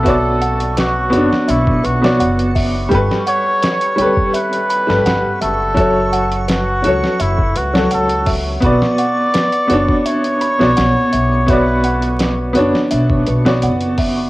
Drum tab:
HH |x-xxx-x-x-x-xxo-|x-x-xxx-xxx-x-x-|x-xxx-x-x-x-xxo-|x-x-xxx-xxx-x-x-|
SD |----o--o---o----|-o--o------oo---|----o--o---o----|-o--o------oo---|
BD |o--------o----o-|o------o--------|o--------o----o-|o------o--------|

HH |x-xxx-x-x-x-xxo-|
SD |----o--o---o----|
BD |o--------o----o-|